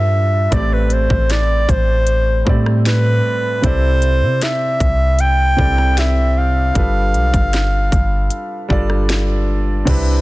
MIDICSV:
0, 0, Header, 1, 5, 480
1, 0, Start_track
1, 0, Tempo, 779221
1, 320, Time_signature, 4, 2, 24, 8
1, 6291, End_track
2, 0, Start_track
2, 0, Title_t, "Clarinet"
2, 0, Program_c, 0, 71
2, 0, Note_on_c, 0, 76, 98
2, 330, Note_on_c, 0, 74, 95
2, 340, Note_off_c, 0, 76, 0
2, 449, Note_on_c, 0, 71, 87
2, 458, Note_off_c, 0, 74, 0
2, 569, Note_on_c, 0, 72, 90
2, 578, Note_off_c, 0, 71, 0
2, 809, Note_on_c, 0, 74, 102
2, 819, Note_off_c, 0, 72, 0
2, 1047, Note_on_c, 0, 72, 98
2, 1056, Note_off_c, 0, 74, 0
2, 1597, Note_off_c, 0, 72, 0
2, 1769, Note_on_c, 0, 71, 104
2, 2248, Note_on_c, 0, 72, 108
2, 2257, Note_off_c, 0, 71, 0
2, 2727, Note_on_c, 0, 76, 114
2, 2736, Note_off_c, 0, 72, 0
2, 3208, Note_on_c, 0, 79, 117
2, 3217, Note_off_c, 0, 76, 0
2, 3689, Note_on_c, 0, 76, 109
2, 3698, Note_off_c, 0, 79, 0
2, 3929, Note_on_c, 0, 77, 107
2, 3938, Note_off_c, 0, 76, 0
2, 5605, Note_off_c, 0, 77, 0
2, 6291, End_track
3, 0, Start_track
3, 0, Title_t, "Grand piano"
3, 0, Program_c, 1, 0
3, 0, Control_c, 1, 64, 127
3, 0, Note_on_c, 1, 55, 74
3, 0, Note_on_c, 1, 62, 65
3, 0, Note_on_c, 1, 65, 65
3, 0, Note_on_c, 1, 67, 64
3, 0, Note_on_c, 1, 69, 64
3, 0, Note_on_c, 1, 71, 77
3, 62, Note_off_c, 1, 69, 0
3, 65, Note_off_c, 1, 71, 0
3, 312, Note_on_c, 1, 45, 71
3, 317, Note_on_c, 1, 57, 71
3, 324, Note_on_c, 1, 60, 67
3, 328, Note_off_c, 1, 67, 0
3, 328, Control_c, 1, 64, 0
3, 329, Note_off_c, 1, 55, 0
3, 331, Note_off_c, 1, 65, 0
3, 331, Note_on_c, 1, 67, 67
3, 332, Note_off_c, 1, 62, 0
3, 337, Note_on_c, 1, 74, 82
3, 430, Control_c, 1, 64, 127
3, 925, Note_off_c, 1, 45, 0
3, 927, Note_off_c, 1, 57, 0
3, 931, Note_off_c, 1, 60, 0
3, 934, Note_off_c, 1, 67, 0
3, 937, Note_off_c, 1, 74, 0
3, 1510, Note_on_c, 1, 45, 70
3, 1517, Note_on_c, 1, 55, 54
3, 1523, Note_on_c, 1, 60, 70
3, 1529, Note_on_c, 1, 67, 65
3, 1536, Note_on_c, 1, 74, 83
3, 1557, Note_on_c, 1, 57, 68
3, 1559, Note_off_c, 1, 55, 0
3, 1972, Note_off_c, 1, 45, 0
3, 1978, Note_off_c, 1, 60, 0
3, 1981, Note_off_c, 1, 67, 0
3, 1985, Note_off_c, 1, 74, 0
3, 1995, Note_off_c, 1, 57, 0
3, 2230, Note_on_c, 1, 48, 74
3, 2236, Note_on_c, 1, 60, 70
3, 2243, Note_on_c, 1, 64, 69
3, 2249, Control_c, 1, 64, 0
3, 2249, Note_on_c, 1, 69, 69
3, 2255, Note_on_c, 1, 74, 86
3, 2361, Control_c, 1, 64, 127
3, 2844, Note_off_c, 1, 48, 0
3, 2847, Note_off_c, 1, 60, 0
3, 2851, Note_off_c, 1, 64, 0
3, 2853, Note_off_c, 1, 69, 0
3, 2856, Note_off_c, 1, 74, 0
3, 3429, Note_on_c, 1, 48, 76
3, 3435, Note_on_c, 1, 60, 68
3, 3442, Note_on_c, 1, 64, 67
3, 3448, Note_on_c, 1, 69, 67
3, 3454, Note_on_c, 1, 74, 79
3, 3891, Note_off_c, 1, 48, 0
3, 3894, Note_off_c, 1, 60, 0
3, 3898, Note_off_c, 1, 64, 0
3, 3901, Note_off_c, 1, 69, 0
3, 3904, Note_off_c, 1, 74, 0
3, 4152, Note_on_c, 1, 55, 72
3, 4158, Note_on_c, 1, 62, 67
3, 4164, Note_on_c, 1, 65, 68
3, 4169, Control_c, 1, 64, 0
3, 4170, Note_on_c, 1, 69, 68
3, 4177, Note_on_c, 1, 71, 82
3, 4288, Control_c, 1, 64, 127
3, 4765, Note_off_c, 1, 55, 0
3, 4768, Note_off_c, 1, 62, 0
3, 4771, Note_off_c, 1, 65, 0
3, 4774, Note_off_c, 1, 69, 0
3, 4777, Note_off_c, 1, 71, 0
3, 5350, Note_on_c, 1, 55, 87
3, 5357, Note_on_c, 1, 62, 83
3, 5362, Note_on_c, 1, 65, 83
3, 5369, Note_on_c, 1, 69, 77
3, 5374, Note_on_c, 1, 74, 96
3, 5812, Note_off_c, 1, 55, 0
3, 5815, Note_off_c, 1, 62, 0
3, 5818, Note_off_c, 1, 65, 0
3, 5821, Note_off_c, 1, 69, 0
3, 5824, Note_off_c, 1, 74, 0
3, 6070, Note_on_c, 1, 48, 86
3, 6077, Note_on_c, 1, 60, 84
3, 6083, Note_on_c, 1, 62, 84
3, 6088, Control_c, 1, 64, 0
3, 6089, Note_on_c, 1, 64, 80
3, 6095, Note_on_c, 1, 71, 100
3, 6211, Control_c, 1, 64, 127
3, 6291, Note_off_c, 1, 48, 0
3, 6291, Note_off_c, 1, 60, 0
3, 6291, Note_off_c, 1, 62, 0
3, 6291, Note_off_c, 1, 64, 0
3, 6291, Note_off_c, 1, 71, 0
3, 6291, End_track
4, 0, Start_track
4, 0, Title_t, "808-style bass"
4, 0, Program_c, 2, 38
4, 0, Note_on_c, 2, 43, 99
4, 296, Note_off_c, 2, 43, 0
4, 320, Note_on_c, 2, 33, 110
4, 666, Note_off_c, 2, 33, 0
4, 678, Note_on_c, 2, 33, 101
4, 1025, Note_off_c, 2, 33, 0
4, 1039, Note_on_c, 2, 33, 100
4, 1501, Note_off_c, 2, 33, 0
4, 1520, Note_on_c, 2, 45, 95
4, 1981, Note_off_c, 2, 45, 0
4, 2240, Note_on_c, 2, 36, 100
4, 2598, Note_on_c, 2, 48, 96
4, 2608, Note_off_c, 2, 36, 0
4, 2713, Note_off_c, 2, 48, 0
4, 2959, Note_on_c, 2, 36, 97
4, 3421, Note_off_c, 2, 36, 0
4, 3441, Note_on_c, 2, 36, 103
4, 4136, Note_off_c, 2, 36, 0
4, 4160, Note_on_c, 2, 31, 100
4, 4399, Note_on_c, 2, 35, 101
4, 4408, Note_off_c, 2, 31, 0
4, 4514, Note_off_c, 2, 35, 0
4, 4519, Note_on_c, 2, 31, 100
4, 4865, Note_off_c, 2, 31, 0
4, 4880, Note_on_c, 2, 31, 98
4, 5111, Note_off_c, 2, 31, 0
4, 5360, Note_on_c, 2, 31, 100
4, 6056, Note_off_c, 2, 31, 0
4, 6081, Note_on_c, 2, 36, 101
4, 6291, Note_off_c, 2, 36, 0
4, 6291, End_track
5, 0, Start_track
5, 0, Title_t, "Drums"
5, 320, Note_on_c, 9, 36, 102
5, 320, Note_on_c, 9, 42, 65
5, 381, Note_off_c, 9, 42, 0
5, 382, Note_off_c, 9, 36, 0
5, 556, Note_on_c, 9, 42, 58
5, 617, Note_off_c, 9, 42, 0
5, 679, Note_on_c, 9, 36, 94
5, 740, Note_off_c, 9, 36, 0
5, 799, Note_on_c, 9, 42, 73
5, 804, Note_on_c, 9, 38, 98
5, 860, Note_off_c, 9, 42, 0
5, 865, Note_off_c, 9, 38, 0
5, 1039, Note_on_c, 9, 36, 101
5, 1042, Note_on_c, 9, 42, 56
5, 1101, Note_off_c, 9, 36, 0
5, 1104, Note_off_c, 9, 42, 0
5, 1273, Note_on_c, 9, 42, 71
5, 1335, Note_off_c, 9, 42, 0
5, 1519, Note_on_c, 9, 36, 87
5, 1581, Note_off_c, 9, 36, 0
5, 1641, Note_on_c, 9, 37, 90
5, 1703, Note_off_c, 9, 37, 0
5, 1761, Note_on_c, 9, 42, 72
5, 1762, Note_on_c, 9, 38, 120
5, 1823, Note_off_c, 9, 42, 0
5, 1824, Note_off_c, 9, 38, 0
5, 2240, Note_on_c, 9, 36, 102
5, 2240, Note_on_c, 9, 42, 68
5, 2301, Note_off_c, 9, 36, 0
5, 2301, Note_off_c, 9, 42, 0
5, 2476, Note_on_c, 9, 42, 58
5, 2538, Note_off_c, 9, 42, 0
5, 2719, Note_on_c, 9, 42, 73
5, 2725, Note_on_c, 9, 38, 106
5, 2781, Note_off_c, 9, 42, 0
5, 2786, Note_off_c, 9, 38, 0
5, 2959, Note_on_c, 9, 36, 99
5, 2963, Note_on_c, 9, 42, 60
5, 3021, Note_off_c, 9, 36, 0
5, 3024, Note_off_c, 9, 42, 0
5, 3195, Note_on_c, 9, 42, 76
5, 3256, Note_off_c, 9, 42, 0
5, 3440, Note_on_c, 9, 36, 88
5, 3502, Note_off_c, 9, 36, 0
5, 3562, Note_on_c, 9, 37, 89
5, 3624, Note_off_c, 9, 37, 0
5, 3681, Note_on_c, 9, 42, 77
5, 3682, Note_on_c, 9, 38, 126
5, 3742, Note_off_c, 9, 42, 0
5, 3743, Note_off_c, 9, 38, 0
5, 4160, Note_on_c, 9, 36, 102
5, 4160, Note_on_c, 9, 42, 70
5, 4222, Note_off_c, 9, 36, 0
5, 4222, Note_off_c, 9, 42, 0
5, 4400, Note_on_c, 9, 42, 35
5, 4462, Note_off_c, 9, 42, 0
5, 4519, Note_on_c, 9, 36, 94
5, 4520, Note_on_c, 9, 42, 61
5, 4581, Note_off_c, 9, 36, 0
5, 4581, Note_off_c, 9, 42, 0
5, 4639, Note_on_c, 9, 42, 77
5, 4644, Note_on_c, 9, 38, 105
5, 4700, Note_off_c, 9, 42, 0
5, 4706, Note_off_c, 9, 38, 0
5, 4880, Note_on_c, 9, 36, 95
5, 4884, Note_on_c, 9, 42, 57
5, 4941, Note_off_c, 9, 36, 0
5, 4945, Note_off_c, 9, 42, 0
5, 5116, Note_on_c, 9, 42, 78
5, 5177, Note_off_c, 9, 42, 0
5, 5360, Note_on_c, 9, 36, 85
5, 5422, Note_off_c, 9, 36, 0
5, 5481, Note_on_c, 9, 37, 93
5, 5542, Note_off_c, 9, 37, 0
5, 5602, Note_on_c, 9, 42, 71
5, 5603, Note_on_c, 9, 38, 125
5, 5664, Note_off_c, 9, 42, 0
5, 5665, Note_off_c, 9, 38, 0
5, 6080, Note_on_c, 9, 36, 106
5, 6081, Note_on_c, 9, 42, 70
5, 6081, Note_on_c, 9, 49, 109
5, 6142, Note_off_c, 9, 36, 0
5, 6142, Note_off_c, 9, 49, 0
5, 6143, Note_off_c, 9, 42, 0
5, 6291, End_track
0, 0, End_of_file